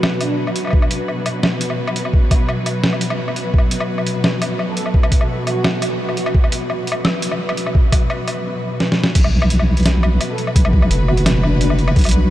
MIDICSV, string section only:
0, 0, Header, 1, 2, 480
1, 0, Start_track
1, 0, Tempo, 350877
1, 1001, Time_signature, 4, 2, 24, 8
1, 16828, End_track
2, 0, Start_track
2, 0, Title_t, "String section"
2, 0, Program_c, 0, 48
2, 0, Note_on_c, 0, 47, 80
2, 0, Note_on_c, 0, 54, 82
2, 0, Note_on_c, 0, 66, 79
2, 0, Note_on_c, 0, 71, 83
2, 12506, Note_off_c, 0, 47, 0
2, 12518, Note_off_c, 0, 54, 0
2, 12519, Note_off_c, 0, 66, 0
2, 12522, Note_off_c, 0, 71, 0
2, 12522, Note_on_c, 0, 47, 71
2, 12780, Note_on_c, 0, 54, 93
2, 12876, Note_on_c, 0, 71, 78
2, 12923, Note_on_c, 0, 66, 73
2, 16828, Note_off_c, 0, 47, 0
2, 16828, Note_off_c, 0, 54, 0
2, 16828, Note_off_c, 0, 66, 0
2, 16828, Note_off_c, 0, 71, 0
2, 16828, End_track
0, 0, End_of_file